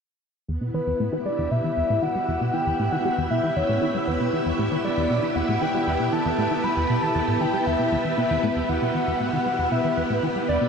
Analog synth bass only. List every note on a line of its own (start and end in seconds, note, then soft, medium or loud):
0.48 0.58 E2 medium
0.61 0.71 B2 medium
0.74 0.80 E3 medium
0.87 0.93 E2 medium
1.00 1.09 A2 medium
1.12 1.16 E3 loud
1.25 1.29 G3 medium
1.38 1.48 E2 medium
1.51 1.61 B2 medium
1.64 1.70 E3 medium
1.77 1.83 E2 medium
1.90 1.99 A2 medium
2.02 2.06 E3 medium
2.15 2.19 G3 medium
2.28 2.38 E2 medium
2.41 2.50 B2 medium
2.54 2.60 E3 medium
2.66 2.73 E2 medium
2.79 2.89 A2 medium
2.92 2.96 E3 medium
3.05 3.09 G3 medium
3.18 3.27 E2 medium
3.30 3.40 B2 medium
3.43 3.50 E3 medium
3.56 3.63 E2 medium
3.69 3.79 A2 medium
3.82 3.86 E3 medium
3.94 3.98 G3 medium
4.07 4.17 E2 medium
4.20 4.30 B2 medium
4.33 4.39 E3 medium
4.46 4.52 E2 medium
4.59 4.68 A2 medium
4.72 4.75 E3 medium
4.84 4.88 G3 medium
4.97 5.07 E2 medium
5.10 5.20 B2 medium
5.23 5.29 E3 medium
5.36 5.42 E2 medium
5.48 5.58 A2 medium
5.61 5.65 E3 medium
5.74 5.78 G3 medium
5.87 5.97 E2 medium
6.00 6.09 B2 medium
6.13 6.19 E3 medium
6.25 6.32 E2 medium
6.38 6.48 A2 medium
6.51 6.55 E3 medium
6.64 6.68 G3 medium
6.77 6.86 E2 medium
6.89 6.99 B2 medium
7.02 7.09 E3 medium
7.15 7.22 E2 medium
7.28 7.38 A2 medium
7.40 7.44 E3 loud
7.53 7.57 G3 medium
7.66 7.76 E2 medium
7.79 7.89 B2 medium
7.92 7.96 E2 medium
8.05 8.14 E3 medium
8.18 8.24 B2 loud
8.30 8.37 E2 medium
8.43 8.50 A2 loud
8.56 8.63 E2 medium
8.69 8.79 E2 medium
8.82 8.91 B2 medium
8.95 9.01 E3 medium
9.07 9.14 E2 medium
9.20 9.30 A2 medium
9.33 9.37 E3 loud
9.46 9.50 G3 medium
9.58 9.68 E2 medium
9.71 9.81 B2 medium
9.84 9.91 E3 medium
9.97 10.03 E2 medium
10.10 10.20 A2 medium
10.23 10.27 E3 loud
10.36 10.39 G3 medium
10.48 10.58 E2 medium
10.61 10.69 B2 medium